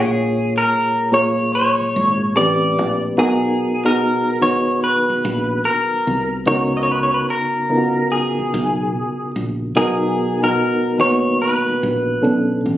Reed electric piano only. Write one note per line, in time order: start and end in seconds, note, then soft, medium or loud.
0.00 0.89 A#2 medium
0.00 0.89 A#3 medium
0.00 0.89 F4 medium
0.00 0.89 G#4 medium
0.00 0.90 C#5 medium
1.12 2.35 A#2 medium
1.12 2.35 A#3 medium
1.12 2.36 F4 medium
1.12 2.36 G#4 medium
1.12 2.36 C#5 medium
2.35 3.05 A2 medium
2.35 3.05 A3 medium
2.35 3.06 C4 medium
2.35 3.06 G4 medium
2.35 3.06 B4 medium
3.17 3.67 B2 medium
3.17 3.68 B3 medium
3.17 3.68 D#4 medium
3.17 3.68 F#4 medium
3.17 3.68 A#4 medium
3.84 4.31 B2 medium
3.84 4.31 B3 medium
3.84 4.31 D#4 medium
3.84 4.31 F#4 medium
3.84 4.32 G#4 medium
4.41 5.71 D#3 medium
4.41 5.71 B3 medium
4.41 5.71 D#4 medium
4.41 5.71 F#4 medium
4.41 5.72 B4 medium
6.46 7.46 C#3 medium
6.46 7.47 B3 medium
6.46 7.47 D#4 medium
6.46 7.47 F#4 medium
6.46 7.47 A#4 medium
7.69 9.00 C#3 medium
7.69 9.00 B3 medium
7.69 9.00 D#4 medium
7.69 7.78 F4 soft
7.69 9.00 A#4 medium
7.77 9.03 F#4 medium
9.75 10.25 B2 medium
9.75 10.26 B3 medium
9.75 10.26 D#4 medium
9.75 10.26 F#4 medium
9.75 10.26 A#4 medium
10.42 10.88 B2 medium
10.42 10.89 B3 medium
10.42 10.89 D#4 medium
10.42 10.89 F#4 medium
10.42 10.89 A#4 medium
10.98 12.22 D#3 medium
10.98 11.07 A#3 soft
10.98 12.22 D#4 medium
10.98 12.22 F#4 medium
10.98 12.22 B4 medium
11.05 12.21 B3 medium
12.21 12.78 B2 medium
12.21 12.78 B3 medium
12.21 12.78 C#4 medium
12.21 12.78 D4 medium
12.21 12.78 A4 medium